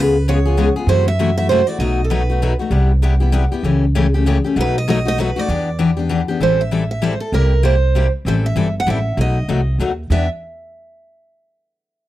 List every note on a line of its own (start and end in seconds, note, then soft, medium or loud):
0.00 0.68 C#2 medium
0.00 0.15 C#3 medium
0.00 0.15 G#3 medium
0.00 0.16 B3 medium
0.00 0.16 F4 medium
0.00 0.16 G#4 medium
0.00 0.28 B4 medium
0.28 0.37 C#3 medium
0.28 0.38 G#3 medium
0.28 0.38 B3 medium
0.28 0.38 F4 medium
0.28 0.38 G#4 medium
0.28 0.73 C#5 medium
0.45 0.57 B3 soft
0.45 0.57 F4 medium
0.45 0.57 G#4 medium
0.57 0.68 C#3 medium
0.57 0.68 G#3 medium
0.57 0.68 B3 medium
0.57 0.68 F4 medium
0.57 0.68 G#4 medium
0.76 0.89 B3 soft
0.76 0.88 F4 medium
0.76 0.87 G#4 medium
0.87 1.61 F#2 medium
0.87 1.07 C3 medium
0.87 1.07 E3 medium
0.87 1.08 A3 medium
0.87 1.08 E4 medium
0.87 1.08 F#4 medium
0.87 1.07 C5 loud
1.08 1.35 E5 medium
1.19 1.29 C3 medium
1.19 1.29 E3 medium
1.19 1.30 A3 medium
1.19 1.30 E4 medium
1.19 1.30 F#4 medium
1.37 1.50 A3 soft
1.37 1.49 E4 medium
1.37 1.49 F#4 medium
1.37 1.49 E5 medium
1.49 1.60 C3 medium
1.49 1.60 E3 medium
1.49 1.61 A3 medium
1.49 1.61 E4 medium
1.49 1.61 F#4 medium
1.49 1.67 C5 medium
1.67 1.80 A3 soft
1.67 1.80 E4 soft
1.67 1.79 F#4 medium
1.67 1.79 D5 medium
1.79 2.53 B1 medium
1.79 1.99 B2 medium
1.79 2.00 F#3 medium
1.79 2.00 A3 medium
1.79 2.00 D#4 medium
1.79 2.00 F#4 medium
1.79 2.05 D#5 medium
2.04 2.10 A4 medium
2.10 2.21 B2 medium
2.10 2.21 F#3 medium
2.10 2.21 A3 medium
2.10 2.22 D#4 medium
2.10 2.21 F#4 medium
2.10 2.56 B4 medium
2.30 2.41 A3 soft
2.30 2.42 D#4 soft
2.30 2.41 F#4 medium
2.42 2.52 B2 medium
2.42 2.52 F#3 medium
2.42 2.52 A3 medium
2.42 2.53 D#4 medium
2.42 2.53 F#4 medium
2.59 2.71 A3 soft
2.59 2.72 D#4 soft
2.59 2.71 F#4 medium
2.70 3.45 C2 medium
2.70 2.91 C3 medium
2.70 2.91 G3 medium
2.70 2.91 B3 medium
2.70 2.91 E4 medium
2.70 2.91 G4 medium
3.02 3.13 C3 medium
3.02 3.13 G3 medium
3.02 3.13 B3 medium
3.02 3.14 E4 medium
3.02 3.14 G4 medium
3.20 3.32 B3 soft
3.20 3.32 E4 soft
3.20 3.32 G4 medium
3.32 3.43 C3 medium
3.32 3.43 G3 medium
3.32 3.44 B3 medium
3.32 3.44 E4 medium
3.32 3.44 G4 medium
3.52 3.64 B3 soft
3.52 3.64 E4 medium
3.52 3.64 G4 medium
3.63 4.37 C#2 medium
3.63 3.84 C#3 medium
3.63 3.84 E3 medium
3.63 3.84 A3 medium
3.63 3.84 C#4 medium
3.63 3.84 G4 medium
3.95 4.06 C#3 medium
3.95 4.06 E3 medium
3.95 4.06 A3 medium
3.95 4.06 C#4 medium
3.95 4.06 G4 medium
4.14 4.26 A3 soft
4.14 4.26 C#4 medium
4.14 4.25 G4 medium
4.26 4.36 C#3 medium
4.26 4.37 E3 medium
4.26 4.37 A3 medium
4.26 4.37 C#4 medium
4.26 4.37 G4 medium
4.44 4.55 A3 soft
4.44 4.57 C#4 medium
4.44 4.56 G4 medium
4.56 5.30 B1 medium
4.56 4.76 B2 medium
4.56 4.76 F#3 medium
4.56 4.76 A3 medium
4.56 4.76 D#4 medium
4.56 4.76 F#4 medium
4.61 4.77 B4 medium
4.78 4.89 D#5 medium
4.88 4.98 B2 medium
4.88 4.98 F#3 medium
4.88 4.98 A3 medium
4.88 4.98 D#4 medium
4.88 4.98 F#4 medium
4.88 5.07 D#5 loud
5.05 5.18 A3 soft
5.05 5.18 D#4 soft
5.05 5.17 F#4 medium
5.05 5.18 D#5 loud
5.18 5.28 B2 medium
5.18 5.29 F#3 medium
5.18 5.29 A3 medium
5.18 5.29 D#4 medium
5.18 5.29 F#4 loud
5.18 5.39 B4 medium
5.36 5.49 A3 soft
5.36 5.49 D#4 medium
5.36 5.48 F#4 medium
5.36 6.30 D5 medium
5.48 6.22 E2 medium
5.48 5.68 E3 medium
5.48 5.68 B3 medium
5.48 5.68 D4 medium
5.48 5.69 G4 medium
5.79 5.90 E3 medium
5.79 5.90 B3 medium
5.79 5.90 D4 medium
5.79 5.90 G4 medium
5.97 6.08 B3 soft
5.97 6.09 D4 soft
5.97 6.09 G4 medium
6.09 6.20 E3 medium
6.09 6.20 B3 medium
6.09 6.21 D4 medium
6.09 6.21 G4 medium
6.28 6.41 B3 medium
6.28 6.41 D4 medium
6.28 6.40 G4 medium
6.40 7.14 A1 medium
6.40 6.60 E3 medium
6.40 6.60 G3 medium
6.40 6.61 C4 medium
6.40 6.61 E4 medium
6.40 6.61 A4 medium
6.40 6.61 C5 medium
6.61 6.90 E5 medium
6.71 6.82 E3 medium
6.71 6.83 G3 medium
6.71 6.82 C4 medium
6.71 6.82 E4 medium
6.71 6.83 A4 medium
6.91 7.02 E5 medium
7.02 7.13 E3 medium
7.02 7.13 G3 medium
7.02 7.13 C4 medium
7.02 7.13 E4 medium
7.02 7.13 A4 medium
7.02 7.20 C5 medium
7.20 7.32 A4 medium
7.32 8.07 C2 medium
7.32 7.52 C3 medium
7.32 7.53 G3 medium
7.32 7.53 A#3 medium
7.32 7.53 E4 medium
7.32 7.53 G4 medium
7.32 7.62 A#4 medium
7.63 7.74 C3 medium
7.63 7.74 G3 medium
7.63 7.74 A#3 medium
7.63 7.74 E4 medium
7.63 7.75 G4 medium
7.63 8.10 C5 medium
7.95 8.06 C3 medium
7.95 8.06 G3 medium
7.95 8.06 A#3 medium
7.95 8.06 E4 medium
7.95 8.06 G4 medium
8.25 8.50 A1 medium
8.25 8.46 E3 medium
8.25 8.46 G3 medium
8.25 8.45 C4 medium
8.25 8.46 E4 medium
8.25 8.46 A4 medium
8.25 8.33 C5 medium
8.46 8.74 E5 medium
8.56 8.82 G1 medium
8.56 8.67 E3 medium
8.56 8.67 G3 medium
8.56 8.67 C4 medium
8.56 8.67 E4 medium
8.56 8.67 A4 medium
8.80 8.89 F#5 medium
8.86 9.13 A1 medium
8.86 8.98 E3 medium
8.86 8.98 G3 medium
8.86 8.98 C4 medium
8.86 8.98 E4 medium
8.86 8.98 A4 medium
8.86 9.20 E5 medium
9.17 9.42 B1 medium
9.17 9.37 B2 soft
9.17 9.37 F#3 medium
9.17 9.37 A3 medium
9.17 9.38 D#4 medium
9.17 9.38 F#4 medium
9.17 9.77 D#5 medium
9.48 9.75 C2 medium
9.48 9.59 B2 medium
9.48 9.60 F#3 medium
9.48 9.59 A3 medium
9.48 9.60 D#4 medium
9.48 9.60 F#4 medium
9.78 10.05 D#2 medium
9.78 9.90 B2 medium
9.78 9.91 F#3 medium
9.78 9.91 A3 medium
9.78 9.91 D#4 medium
9.78 9.91 F#4 medium
10.10 10.27 E2 medium
10.10 10.25 E3 medium
10.10 10.25 B3 medium
10.10 10.26 D4 medium
10.10 10.26 G4 medium
10.10 10.28 E5 medium